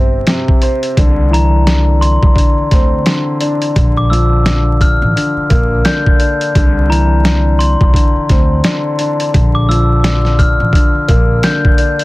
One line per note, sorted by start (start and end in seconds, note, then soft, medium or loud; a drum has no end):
0.00 0.22 G1 medium
0.00 0.26 C3 medium
0.00 0.97 C4 medium
0.27 0.97 C3 medium
0.27 snare loud
0.27 closed hi-hat medium
0.48 kick medium
0.62 0.97 C5 medium
0.62 closed hi-hat medium
0.83 closed hi-hat medium
0.97 2.19 C2 loud
0.97 1.66 D3 medium
0.97 kick loud
0.97 closed hi-hat medium
1.30 3.75 E3 medium
1.30 1.98 A#5 medium
1.30 closed hi-hat medium
1.67 2.33 D3 medium
1.67 snare loud
1.67 closed hi-hat medium
2.01 3.23 C6 medium
2.01 closed hi-hat medium
2.23 2.34 C2 medium
2.23 kick loud
2.35 3.05 D3 medium
2.35 kick loud
2.35 closed hi-hat medium
2.58 muted upright bass stroke soft
2.71 3.01 D2 medium
2.71 3.77 C4 medium
2.71 kick medium
2.71 snare soft
2.71 closed hi-hat medium
3.06 3.74 D3 medium
3.06 snare loud
3.06 closed hi-hat medium
3.40 3.76 D4 medium
3.40 closed hi-hat medium
3.62 closed hi-hat medium
3.76 4.98 A#1 loud
3.76 4.44 D3 medium
3.76 kick loud
3.76 closed hi-hat medium
3.97 4.10 D6 medium
4.10 6.55 F3 medium
4.10 4.76 E6 medium
4.10 closed hi-hat medium
4.45 5.13 D3 medium
4.45 snare loud
4.45 closed hi-hat medium
4.81 5.33 F6 medium
4.81 kick medium
4.81 closed hi-hat medium
5.02 5.14 A1 medium
5.15 5.85 D3 medium
5.15 closed hi-hat medium
5.37 muted upright bass stroke soft
5.50 5.80 A#1 loud
5.50 6.55 A#3 medium
5.50 kick loud
5.50 closed hi-hat medium
5.85 6.54 D3 medium
5.85 6.17 G6 medium
5.85 snare loud
5.85 closed hi-hat medium
6.06 kick medium
6.20 6.55 D4 medium
6.20 closed hi-hat medium
6.41 closed hi-hat medium
6.55 7.77 C2 loud
6.55 7.23 D3 medium
6.55 kick loud
6.55 closed hi-hat loud
6.89 9.34 E3 medium
6.89 7.56 A#5 medium
6.89 closed hi-hat medium
7.25 7.91 D3 medium
7.25 snare loud
7.25 closed hi-hat medium
7.59 8.81 C6 medium
7.59 closed hi-hat medium
7.81 7.93 C2 medium
7.81 kick loud
7.93 8.62 D3 medium
7.93 kick medium
7.93 closed hi-hat medium
8.16 muted upright bass stroke soft
8.29 8.59 D2 medium
8.29 9.35 C4 medium
8.29 kick medium
8.29 snare soft
8.29 closed hi-hat medium
8.64 9.32 D3 medium
8.64 snare loud
8.64 closed hi-hat medium
8.98 9.34 D4 medium
8.98 closed hi-hat medium
9.20 closed hi-hat medium
9.34 10.56 A#1 loud
9.34 10.02 D3 medium
9.34 kick loud
9.34 closed hi-hat loud
9.55 9.68 D6 medium
9.68 12.04 F3 medium
9.68 10.35 E6 medium
9.68 closed hi-hat medium
10.03 10.71 D3 medium
10.03 snare loud
10.03 closed hi-hat medium
10.25 snare soft
10.39 10.91 F6 medium
10.39 kick medium
10.39 closed hi-hat medium
10.60 10.72 A1 medium
10.73 11.43 D3 medium
10.73 kick loud
10.73 closed hi-hat medium
10.95 muted upright bass stroke soft
11.08 11.38 A#1 loud
11.08 12.04 A#3 medium
11.08 kick medium
11.08 closed hi-hat medium
11.43 12.04 D3 medium
11.43 11.75 G6 medium
11.43 snare loud
11.43 closed hi-hat medium
11.65 kick medium
11.78 12.04 D4 medium
11.78 closed hi-hat medium
11.99 closed hi-hat medium